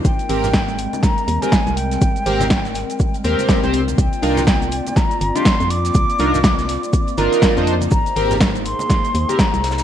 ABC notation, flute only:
X:1
M:4/4
L:1/16
Q:"Swing 16ths" 1/4=122
K:Ablyd
V:1 name="Flute"
g8 b3 a3 g2- | g8- g2 z6 | g8 b3 c'3 d'2- | d'8- d'2 z6 |
b4 z2 c'6 b4 |]